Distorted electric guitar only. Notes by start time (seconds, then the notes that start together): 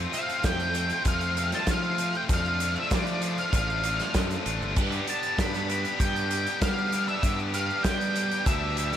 Already playing: A3 C4 F4
0.13 A3 C4 F4
0.43 A3 C4 F4
0.74 A3 C4 F4
1.06 A3 C4 F4
1.37 A3 C4 F4
1.67 A3 C4 F4
1.98 A3 C4 F4
2.29 F3 A3 D4 F4
2.60 F3 A3 D4 F4
2.90 F3 A3 D4 F4
3.21 F3 A3 D4 F4
3.52 F3 A3 D4 F4
3.83 F3 A3 D4 F4
4.14 F3 A3 D4 F4
4.45 F3 A3 D4 F4
4.77 B3 D4 G4
5.07 B3 D4 G4
5.38 B3 D4 G4
5.69 B3 D4 G4
5.99 B3 D4 G4
6.30 B3 D4 G4
6.62 B3 D4 G4
6.92 B3 D4 G4
7.22 B3 D4 G4
7.54 B3 D4 G4
7.85 B3 D4 G4
8.16 B3 D4 G4
8.46 B3 D4 G4
8.77 B3 D4 G4